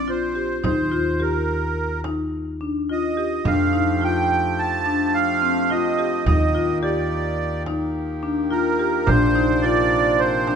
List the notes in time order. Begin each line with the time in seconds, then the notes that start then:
Already playing: A#1 D5
0.08 F4 C5, frame drum
0.35 G4
0.64 D#2 D#4 C5, frame drum
0.92 F4
1.20 G4 A#4, frame drum
1.48 frame drum
2.04 D#4, frame drum
2.61 D4
2.89 F4 D#5
3.17 G4
3.45 F2 F3 A3 D4 G4 F5, frame drum
3.73 D#4
4.01 F4 G5
4.30 frame drum
4.59 A5
4.86 D4
5.14 F5
5.42 C4
5.70 F4 D#5, frame drum
5.99 G4
6.26 D#2 D#3 A#3 D#4 D#5, frame drum
6.55 F4
6.83 G4 D5
7.11 frame drum
7.66 D#4, frame drum
8.23 D4
8.51 F4 A#4, frame drum
8.79 G4
9.06 A#1 C3 D4 C5, frame drum
9.35 D#4
9.62 F4 D5
9.92 frame drum
10.20 C5
10.47 D4, frame drum